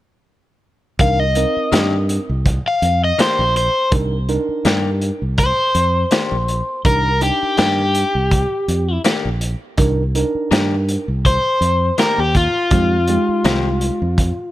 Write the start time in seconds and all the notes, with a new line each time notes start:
0.99 C2 D4 D#4 A#4 F5, kick, closed hi-hat
1.20 D#5
1.35 C4 D#4 A#4, closed hi-hat
1.57 muted fingered electric bass stroke
1.72 G2 D#3 A#3 D4 G4, snare, closed hi-hat
2.09 closed hi-hat
2.29 C2
2.46 kick, closed hi-hat
2.68 F5
2.82 F2, closed hi-hat
3.04 D#5
3.19 D#3 A#3 D4 G4 C5, snare, closed hi-hat
3.39 A#1
3.56 C5, closed hi-hat
3.92 C2 D4 D#4 A#4, kick, closed hi-hat
4.29 D4 D#4 A#4, closed hi-hat
4.49 muted fingered electric bass stroke
4.65 G2 D#3 A#3 D4 G4, snare, closed hi-hat
5.02 closed hi-hat
5.22 C2
5.38 C5, kick, closed hi-hat
5.75 F2, closed hi-hat
6.11 D#3 A#3 D4 G4, snare, closed hi-hat
6.32 A#1
6.48 closed hi-hat
6.85 C2 D4 D#4 A#4, kick, closed hi-hat
7.21 D4 D#4 G4, closed hi-hat
7.43 muted fingered electric bass stroke
7.57 G2 D#3 A#3 D4 G4, snare, closed hi-hat
7.95 closed hi-hat
8.15 C2
8.31 kick, closed hi-hat
8.68 F2, closed hi-hat
9.04 D#3 A#3 D4 G4, snare, closed hi-hat
9.25 A#1
9.41 closed hi-hat
9.78 C2 D4 D#4 A#4, kick, closed hi-hat
10.15 D4 D#4 A#4, closed hi-hat
10.35 muted fingered electric bass stroke
10.51 G2 D#3 A#3 D4 G4, snare, closed hi-hat
10.89 closed hi-hat
11.08 C2
11.25 C5, kick, closed hi-hat
11.61 F2, closed hi-hat
11.98 D#3 A#3 D4 G4 A#4, snare, closed hi-hat
12.18 D#2 G4
12.35 F4, kick, closed hi-hat
12.71 F2 G#3 D#4 G4, kick, closed hi-hat
13.08 G#3 D#4 G4, closed hi-hat
13.29 muted fingered electric bass stroke
13.44 C2 D#3 G#3 C4 G4, snare, closed hi-hat
13.81 closed hi-hat
14.02 F2
14.18 kick, closed hi-hat